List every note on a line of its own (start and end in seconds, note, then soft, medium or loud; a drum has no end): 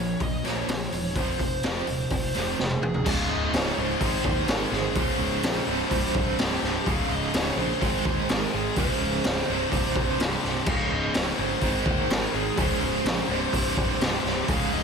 0.00 0.14 A#1 medium
0.00 0.19 A#2 medium
0.00 0.19 F3 medium
0.00 0.22 C#5 medium
0.20 0.38 A#1 medium
0.20 0.42 A#2 medium
0.20 0.42 F3 medium
0.20 0.45 D#5 medium
0.20 kick loud
0.20 open hi-hat medium
0.44 0.61 A#1 medium
0.44 0.67 A#2 medium
0.44 0.67 F3 medium
0.44 0.68 A#3 medium
0.44 0.67 C#5 medium
0.44 snare soft
0.44 open hi-hat soft
0.68 0.86 A#1 medium
0.68 0.90 A#2 medium
0.68 0.90 F3 medium
0.68 1.16 C#5 medium
0.68 snare loud
0.68 open hi-hat medium
0.92 1.15 E1 medium
0.92 1.14 A#2 medium
0.92 1.14 F3 medium
0.92 open hi-hat medium
1.15 1.33 F1 medium
1.15 1.38 F2 medium
1.15 1.39 C3 medium
1.15 1.39 F3 medium
1.15 1.28 C5 medium
1.15 kick loud
1.15 open hi-hat medium
1.30 1.66 C5 medium
1.39 1.57 F1 medium
1.39 1.61 F2 medium
1.39 1.61 C3 medium
1.39 kick medium
1.39 open hi-hat medium
1.63 1.81 F1 medium
1.63 1.86 F2 medium
1.63 1.86 C3 medium
1.63 1.87 F3 medium
1.63 1.75 A#4 medium
1.63 snare loud
1.63 open hi-hat medium
1.76 2.12 C5 medium
1.87 2.05 D#1 medium
1.87 2.09 F2 medium
1.87 2.09 C3 medium
1.87 open hi-hat medium
2.10 2.28 F1 medium
2.10 2.33 F2 medium
2.10 2.33 C3 medium
2.10 2.80 C5 medium
2.10 kick loud
2.10 open hi-hat medium
2.34 2.53 F1 medium
2.34 2.57 F2 medium
2.34 2.57 C3 medium
2.34 2.58 F3 medium
2.34 snare soft
2.34 open hi-hat medium
2.58 2.76 F1 medium
2.58 2.80 F2 medium
2.58 2.80 C3 medium
2.58 snare medium
2.63 3.10 G#4 medium
2.70 high tom medium
2.82 3.01 F1 medium
2.82 3.04 F2 medium
2.82 3.04 C3 medium
2.82 mid tom medium
2.94 floor tom medium
3.04 3.22 C#1 loud
3.04 3.75 C#2 medium
3.04 3.76 G#2 loud
3.04 3.75 C#3 loud
3.04 kick loud
3.04 crash loud
3.10 3.32 F5 loud
3.30 3.46 C#1 medium
3.30 3.55 D#5 loud
3.53 3.69 C#1 medium
3.53 3.79 C#5 loud
3.53 snare loud
3.53 open hi-hat medium
3.76 3.93 C#1 medium
3.76 3.99 C#2 medium
3.76 3.98 G#2 medium
3.76 3.99 C#3 medium
3.76 4.52 C5 loud
4.00 4.17 G#1 medium
4.00 4.70 G#2 loud
4.00 4.72 D#3 medium
4.00 kick medium
4.00 open hi-hat medium
4.04 4.70 G#3 loud
4.24 4.40 D#2 medium
4.24 kick medium
4.47 4.63 G#1 medium
4.47 4.73 A#4 medium
4.47 snare loud
4.47 open hi-hat medium
4.71 4.96 G#1 medium
4.71 4.94 G#2 medium
4.71 4.95 D#3 medium
4.71 4.94 G#3 medium
4.71 4.98 G#4 medium
4.71 snare soft
4.94 5.12 C#1 medium
4.94 5.65 C#2 medium
4.94 5.66 G#2 loud
4.94 5.67 C#3 loud
4.94 6.43 C5 loud
4.94 kick loud
4.94 open hi-hat medium
5.19 5.35 C#1 medium
5.43 5.59 A#1 medium
5.43 snare loud
5.43 open hi-hat medium
5.66 5.83 C1 medium
5.66 6.37 C2 loud
5.66 6.38 G2 medium
5.66 6.39 C3 loud
5.91 6.07 C1 loud
5.91 kick medium
5.91 open hi-hat medium
6.14 6.30 C1 medium
6.14 kick medium
6.38 6.54 C1 medium
6.38 6.84 C2 medium
6.38 6.86 G2 medium
6.38 6.86 C3 medium
6.38 6.89 G4 medium
6.38 snare loud
6.38 open hi-hat medium
6.62 6.78 C1 medium
6.62 snare soft
6.85 7.02 C#1 loud
6.85 7.56 C#2 medium
6.85 7.57 G#2 loud
6.85 7.09 F5 loud
6.85 kick loud
6.85 open hi-hat medium
6.89 7.55 C#3 loud
7.09 7.25 C#1 medium
7.09 7.35 D#5 medium
7.34 7.50 C#1 medium
7.34 7.58 C#5 loud
7.34 snare loud
7.34 open hi-hat medium
7.56 7.73 A#1 medium
7.56 7.80 C#2 medium
7.56 7.79 G#2 medium
7.56 7.80 C#3 medium
7.56 8.25 C5 loud
7.81 7.97 G#1 medium
7.81 8.51 G#2 medium
7.81 8.52 D#3 medium
7.81 kick medium
7.81 open hi-hat medium
7.85 8.51 G#3 loud
8.05 8.21 D#2 medium
8.05 kick medium
8.29 8.45 G#1 medium
8.29 8.54 A#4 medium
8.29 snare loud
8.29 open hi-hat medium
8.52 8.69 G#1 medium
8.52 8.74 G#2 medium
8.52 8.76 D#3 medium
8.52 8.75 G#3 medium
8.52 8.78 G#4 medium
8.75 8.92 C#1 loud
8.75 9.46 C#2 medium
8.75 9.47 G#2 loud
8.75 10.25 C5 loud
8.75 kick loud
8.75 open hi-hat medium
8.79 9.48 C#3 loud
9.02 9.17 C#1 medium
9.24 9.41 C#1 medium
9.24 snare loud
9.24 open hi-hat medium
9.47 9.65 C1 medium
9.47 10.18 C2 loud
9.47 10.19 G2 loud
9.47 10.19 C3 loud
9.72 9.87 C1 loud
9.72 kick medium
9.72 open hi-hat medium
9.96 10.11 C1 medium
9.96 kick medium
10.19 10.36 C1 medium
10.19 10.65 C2 medium
10.19 10.67 G2 medium
10.19 10.67 C3 medium
10.19 10.69 G4 medium
10.19 snare loud
10.19 open hi-hat medium
10.44 10.60 C1 medium
10.44 snare soft
10.66 10.83 C#1 medium
10.66 11.37 C#2 medium
10.66 11.38 G#2 loud
10.66 11.36 C#3 loud
10.66 10.92 F5 loud
10.66 kick loud
10.66 crash loud
10.90 11.07 C#1 medium
10.90 11.13 D#5 medium
11.14 11.31 C#1 medium
11.14 11.22 C#5 loud
11.14 snare loud
11.14 open hi-hat medium
11.37 11.54 G1 medium
11.37 11.60 G#2 medium
11.37 11.60 C#3 medium
11.37 12.12 C5 medium
11.41 11.61 C#2 medium
11.61 11.78 G#1 medium
11.61 12.32 G#2 medium
11.61 12.33 D#3 loud
11.61 12.32 G#3 loud
11.61 kick medium
11.61 open hi-hat medium
11.86 12.01 D#2 medium
11.86 kick medium
12.10 12.25 G#1 medium
12.10 12.34 A#4 medium
12.10 snare loud
12.10 open hi-hat medium
12.33 12.49 G#1 medium
12.33 12.57 G#2 medium
12.33 12.57 D#3 medium
12.33 12.56 G#3 medium
12.33 12.59 G#4 medium
12.57 12.73 C#1 loud
12.57 13.28 C#2 loud
12.57 13.29 G#2 loud
12.57 13.29 C#3 loud
12.57 14.05 C5 loud
12.57 kick loud
12.57 open hi-hat medium
12.81 12.97 C#1 medium
13.05 13.21 A#1 medium
13.05 snare loud
13.05 open hi-hat medium
13.28 13.44 C1 loud
13.28 13.98 C2 loud
13.28 14.00 G2 loud
13.28 14.01 C3 loud
13.53 13.69 C1 medium
13.53 kick medium
13.53 open hi-hat medium
13.77 13.93 C1 medium
13.77 kick medium
13.99 14.17 C1 medium
13.99 14.46 C2 medium
13.99 14.48 G2 medium
13.99 14.50 G4 medium
13.99 snare loud
13.99 open hi-hat medium
14.03 14.48 C3 medium
14.24 14.40 C1 loud
14.24 snare soft
14.47 14.64 C#1 loud
14.47 14.83 C#2 loud
14.47 14.83 G#2 loud
14.47 14.73 F5 loud
14.47 kick loud
14.47 open hi-hat medium
14.51 14.83 C#3 loud
14.73 14.83 C#1 medium
14.73 14.83 D#5 medium